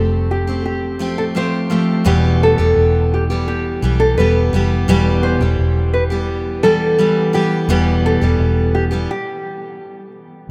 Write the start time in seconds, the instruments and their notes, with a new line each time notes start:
Already playing: fingered electric bass F1, steel-string acoustic guitar A3 C4 G4, nylon-string guitar A4
0.31 nylon-string guitar G4
0.47 steel-string acoustic guitar A3 C4 G4
0.66 nylon-string guitar G4
0.99 steel-string acoustic guitar F3 A3 C4 G4
1.18 nylon-string guitar A4
1.35 steel-string acoustic guitar F3 A3 C4 G4, nylon-string guitar C5
1.70 steel-string acoustic guitar F3 A3 C4 G4
2.05 fingered electric bass E1, steel-string acoustic guitar E2 B2 E3 G3 B3 G4
2.43 nylon-string guitar A4
2.58 fingered electric bass E1, steel-string acoustic guitar E3 G3 B3 G4
2.76 fingered electric bass E1
3.14 nylon-string guitar G4
3.30 steel-string acoustic guitar E3 G3 B3 G4
3.48 nylon-string guitar G4
3.82 fingered electric bass B1, steel-string acoustic guitar E3 G3 B3 G4
4.00 nylon-string guitar A4
4.18 fingered electric bass E1, steel-string acoustic guitar E3 G3 B3 G4, nylon-string guitar B4
4.53 fingered electric bass F1, steel-string acoustic guitar E3 G3 B3 G4
4.88 fingered electric bass E1, steel-string acoustic guitar E2 B2 E3 G3 B3 G4
5.23 nylon-string guitar C5
5.41 fingered electric bass E1, steel-string acoustic guitar E3 G3 G4
5.59 fingered electric bass E1
5.94 nylon-string guitar B4
6.10 steel-string acoustic guitar E3 G3 B3 G4
6.63 steel-string acoustic guitar E3 G3 B3 G4, nylon-string guitar A4
6.98 steel-string acoustic guitar E3 G3 B3 G4
7.33 steel-string acoustic guitar E3 G3 B3 G4, nylon-string guitar G4
7.68 fingered electric bass E1, steel-string acoustic guitar E2 B2 E3 G3 B3 G4
8.06 nylon-string guitar A4
8.21 fingered electric bass E1, steel-string acoustic guitar E3 G3 B3 G4
8.39 fingered electric bass E1
8.75 nylon-string guitar G4
8.91 steel-string acoustic guitar E3 G3 B3 G4
9.11 nylon-string guitar G4